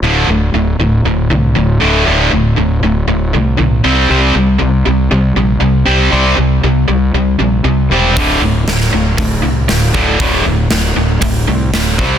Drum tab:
HH |----------------|----------------|----------------|----------------|
SD |----------------|----------------|----------------|----------------|
BD |----------------|----------------|----------------|----------------|

HH |o---o---o---o---|o---o---o---o---|
SD |----oo------o---|----o-------o---|
BD |o-------o-----o-|o-------o-----o-|